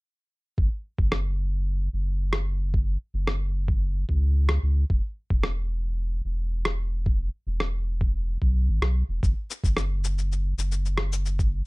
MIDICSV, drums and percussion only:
0, 0, Header, 1, 2, 480
1, 0, Start_track
1, 0, Tempo, 540541
1, 513, Time_signature, 4, 2, 24, 8
1, 10359, End_track
2, 0, Start_track
2, 0, Title_t, "Drums"
2, 515, Note_on_c, 9, 36, 108
2, 603, Note_off_c, 9, 36, 0
2, 875, Note_on_c, 9, 36, 88
2, 963, Note_off_c, 9, 36, 0
2, 993, Note_on_c, 9, 37, 65
2, 1081, Note_off_c, 9, 37, 0
2, 2066, Note_on_c, 9, 37, 70
2, 2155, Note_off_c, 9, 37, 0
2, 2432, Note_on_c, 9, 36, 110
2, 2521, Note_off_c, 9, 36, 0
2, 2908, Note_on_c, 9, 37, 70
2, 2996, Note_off_c, 9, 37, 0
2, 3271, Note_on_c, 9, 36, 96
2, 3359, Note_off_c, 9, 36, 0
2, 3630, Note_on_c, 9, 36, 53
2, 3719, Note_off_c, 9, 36, 0
2, 3985, Note_on_c, 9, 37, 70
2, 4074, Note_off_c, 9, 37, 0
2, 4351, Note_on_c, 9, 36, 111
2, 4440, Note_off_c, 9, 36, 0
2, 4710, Note_on_c, 9, 36, 99
2, 4799, Note_off_c, 9, 36, 0
2, 4826, Note_on_c, 9, 37, 64
2, 4915, Note_off_c, 9, 37, 0
2, 5907, Note_on_c, 9, 37, 68
2, 5996, Note_off_c, 9, 37, 0
2, 6271, Note_on_c, 9, 36, 112
2, 6359, Note_off_c, 9, 36, 0
2, 6751, Note_on_c, 9, 37, 60
2, 6839, Note_off_c, 9, 37, 0
2, 7113, Note_on_c, 9, 36, 92
2, 7202, Note_off_c, 9, 36, 0
2, 7474, Note_on_c, 9, 36, 51
2, 7563, Note_off_c, 9, 36, 0
2, 7834, Note_on_c, 9, 37, 61
2, 7923, Note_off_c, 9, 37, 0
2, 8196, Note_on_c, 9, 36, 106
2, 8200, Note_on_c, 9, 69, 30
2, 8285, Note_off_c, 9, 36, 0
2, 8289, Note_off_c, 9, 69, 0
2, 8441, Note_on_c, 9, 69, 66
2, 8530, Note_off_c, 9, 69, 0
2, 8557, Note_on_c, 9, 36, 97
2, 8565, Note_on_c, 9, 69, 41
2, 8645, Note_off_c, 9, 36, 0
2, 8654, Note_off_c, 9, 69, 0
2, 8672, Note_on_c, 9, 37, 60
2, 8681, Note_on_c, 9, 69, 28
2, 8761, Note_off_c, 9, 37, 0
2, 8770, Note_off_c, 9, 69, 0
2, 8918, Note_on_c, 9, 69, 64
2, 9007, Note_off_c, 9, 69, 0
2, 9042, Note_on_c, 9, 69, 36
2, 9131, Note_off_c, 9, 69, 0
2, 9164, Note_on_c, 9, 69, 29
2, 9253, Note_off_c, 9, 69, 0
2, 9401, Note_on_c, 9, 69, 60
2, 9490, Note_off_c, 9, 69, 0
2, 9517, Note_on_c, 9, 69, 39
2, 9606, Note_off_c, 9, 69, 0
2, 9639, Note_on_c, 9, 69, 28
2, 9728, Note_off_c, 9, 69, 0
2, 9746, Note_on_c, 9, 37, 65
2, 9835, Note_off_c, 9, 37, 0
2, 9880, Note_on_c, 9, 69, 70
2, 9968, Note_off_c, 9, 69, 0
2, 9995, Note_on_c, 9, 69, 42
2, 10084, Note_off_c, 9, 69, 0
2, 10116, Note_on_c, 9, 36, 100
2, 10116, Note_on_c, 9, 69, 29
2, 10204, Note_off_c, 9, 69, 0
2, 10205, Note_off_c, 9, 36, 0
2, 10359, End_track
0, 0, End_of_file